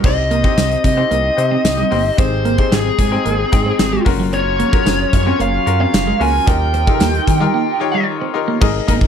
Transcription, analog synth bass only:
0.04 C2
0.57 C2
0.84 C3
1.11 C2
1.38 C3
1.64 C2
1.91 G1
2.18 G#1
2.72 G#1
2.99 G#2
3.25 G#1
3.53 G#2
3.79 G#1
4.06 F#1
4.86 F#1
5.13 F#2
5.40 F#1
5.67 F#2
5.94 F#1
6.20 C#2
6.47 D#2
7.00 D#2
7.28 D#3
8.61 G#1
8.89 G#1

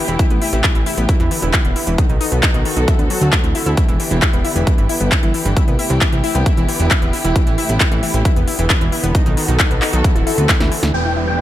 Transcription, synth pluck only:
0.08 E3
0.19 E4
0.31 B3
0.42 E4
0.53 E3
0.64 E3
0.75 E3
0.86 E4
0.98 B3
1.09 E4
1.20 E3
1.31 E3
1.42 E3
1.54 E4
1.65 B3
1.76 E4
1.87 E3
1.98 D#3
2.09 D#3
2.21 D#4
2.32 B3
2.43 D#4
2.54 D#3
2.65 D#3
2.77 D#3
2.88 E4
2.99 B3
3.10 F#3
3.21 F#3
3.33 A3
3.44 E3
3.55 E4
3.66 E4
3.77 E4
3.89 E3
4.00 E3
4.11 E3
4.22 E4
4.33 B3
4.45 E4
4.56 E3
4.67 E3
4.78 E3
4.89 E4
5.01 B3
5.12 E4
5.23 E3
5.34 E3
5.45 E3
5.57 E4
5.68 B3
5.79 E4
5.90 E3
6.01 E3
6.13 E3
6.24 E4
6.35 B3
6.46 E4
6.57 E3
6.68 E3
6.80 E3
6.91 E4
7.02 B3
7.13 E4
7.24 E3
7.36 E3
7.47 E3
7.58 E4
7.69 B3
7.81 E4
7.92 E3
8.03 E3
8.14 E3
8.25 E4
8.36 B3
8.48 E4
8.59 E3
8.70 E3
8.81 E3
8.92 E4
9.04 B3
9.15 D#4
9.26 D#3
9.37 D#3
9.48 D#3
9.60 D#4
9.71 B3
9.82 D#4
9.93 D#3
10.04 E3
10.15 E3
10.27 E4
10.38 B3
10.49 E4
10.60 E3
10.72 E3
10.83 E3
10.94 E3
11.05 E3
11.16 E4
11.28 B3

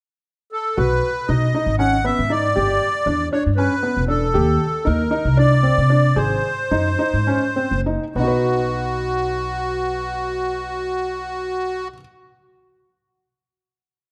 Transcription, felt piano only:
0.77 F#4
1.29 D#4
1.55 D#4
1.79 C#4
2.05 B3
2.30 D#4
2.56 G4
3.07 D4
3.33 D4
3.58 C#4
3.83 B3
4.08 D4
4.34 G4
4.85 D#4
5.11 D#4
5.37 D4
5.63 C4
5.90 D4
6.16 G#4
6.71 D#4
6.99 D#4
7.27 C#4
7.56 C4
7.86 D#4
8.16 B3 D#4
8.24 F#4 B4

